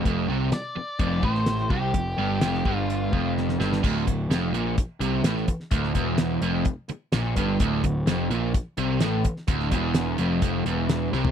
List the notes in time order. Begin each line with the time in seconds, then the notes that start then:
0.05 F1 F2, kick, closed hi-hat
0.28 C2 C3
0.52 D5, muted picked electric bass stroke, muted overdriven electric guitar stroke, snare, closed hi-hat
0.76 muted picked electric bass stroke, muted overdriven electric guitar stroke
0.99 F1 F2 D5, kick, closed hi-hat
1.23 A1 A2 C5, kick
1.35 snare
1.46 snare, closed hi-hat
1.58 snare
1.70 C2 C3 G4, kick
1.94 F1 F2, kick, closed hi-hat
2.18 G1 G2
2.41 F1 F2, snare, closed hi-hat
2.54 snare
2.65 G1 G2, kick
2.78 F4
2.90 closed hi-hat
3.12 F1 F2, kick
3.37 snare
3.49 snare
3.60 G1 G2, snare
3.73 snare
3.83 D1 D2, kick, crash
4.07 D1 D2, kick, closed hi-hat
4.30 F1 F2, snare, closed hi-hat
4.53 A#1 A#2, closed hi-hat
4.77 muted overdriven electric guitar stroke, muted picked electric bass stroke, kick, closed hi-hat
5.00 C2 C3, closed hi-hat
5.24 A1 A2, snare, closed hi-hat
5.36 snare
5.48 muted overdriven electric guitar stroke, muted picked electric bass stroke, kick, closed hi-hat
5.60 snare
5.71 D1 D2, kick, closed hi-hat
5.83 snare
5.95 E1 E2, kick, closed hi-hat
6.18 snare, closed hi-hat
6.41 F1 F2, closed hi-hat
6.65 kick, closed hi-hat
6.89 muted picked electric bass stroke, muted overdriven electric guitar stroke, closed hi-hat
7.12 A#1 A#2, snare, closed hi-hat
7.36 G1 G2, kick, closed hi-hat
7.60 D1 D2, kick, closed hi-hat
7.83 D1 D2, kick, closed hi-hat
8.07 F1 F2, snare, closed hi-hat
8.30 A#1 A#2, closed hi-hat
8.54 muted picked electric bass stroke, muted overdriven electric guitar stroke, kick, closed hi-hat
8.77 C2 C3, closed hi-hat
9.00 A1 A2, snare, closed hi-hat
9.24 muted picked electric bass stroke, muted overdriven electric guitar stroke, kick, closed hi-hat
9.37 snare
9.48 D1 D2, kick, closed hi-hat
9.60 snare
9.71 E1 E2, kick, closed hi-hat
9.94 snare, closed hi-hat
10.18 F1 F2, closed hi-hat
10.42 F1 F2, kick, closed hi-hat
10.66 E1 E2, closed hi-hat
10.89 snare, closed hi-hat
11.13 C2 C3, snare
11.25 floor tom